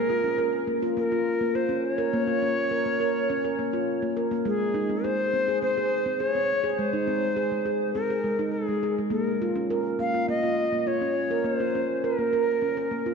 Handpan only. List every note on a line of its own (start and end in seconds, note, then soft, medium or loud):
0.10 0.24 F4 medium
0.24 0.38 C#4 medium
0.38 0.67 A#4 medium
0.67 0.82 A#3 medium
0.82 0.97 F4 medium
0.97 1.11 A#3 medium
1.12 1.40 F4 medium
1.41 1.55 A#3 medium
1.55 1.69 F4 medium
1.69 1.98 C#4 medium
1.98 2.13 A#4 medium
2.13 2.28 A#3 medium
2.27 2.42 F4 medium
2.42 2.71 C#4 medium
2.71 2.86 A#4 medium
2.86 3.00 A#3 medium
3.00 3.29 A#4 medium
3.30 3.44 C#4 medium
3.45 3.59 A#4 medium
3.59 3.73 A#3 medium
3.73 4.02 F4 medium
4.02 4.17 A#3 medium
4.17 4.31 A#4 medium
4.31 4.46 A#3 medium
4.45 4.74 G#3 medium
4.74 4.89 D#4 medium
4.89 5.04 C4 medium
5.04 5.33 G#4 medium
5.33 5.48 C4 medium
5.48 5.62 G#4 medium
5.62 5.76 C4 medium
5.77 6.06 G#4 medium
6.06 6.20 C4 medium
6.20 6.35 G#4 medium
6.35 6.64 C4 medium
6.64 6.78 G#4 medium
6.79 6.93 G#3 medium
6.93 7.07 D#4 medium
7.07 7.36 C4 medium
7.36 7.51 G#4 medium
7.52 7.66 G#3 medium
7.66 7.95 G#4 medium
7.95 8.09 C4 medium
8.10 8.24 G#4 medium
8.24 8.39 G#3 medium
8.39 8.68 D#4 medium
8.68 8.83 G#3 medium
8.83 8.97 G#4 medium
8.98 9.12 G#3 medium
9.10 9.98 A#3 medium
9.42 9.56 F4 medium
9.56 9.70 C#4 medium
9.70 9.99 A#4 medium
9.99 10.13 A#3 medium
10.14 10.28 F4 medium
10.28 10.43 A#3 medium
10.43 10.72 F4 medium
10.72 10.87 A#3 medium
10.87 11.01 F4 medium
11.01 11.30 C#4 medium
11.31 11.45 A#4 medium
11.44 12.17 A#3 medium
11.60 11.74 F4 medium
11.75 12.04 C#4 medium
12.04 12.18 A#4 medium
12.18 12.33 A#3 medium
12.33 12.62 A#4 medium
12.62 12.76 C#4 medium
12.77 12.91 A#4 medium
12.91 13.06 A#3 medium
13.06 13.14 F4 medium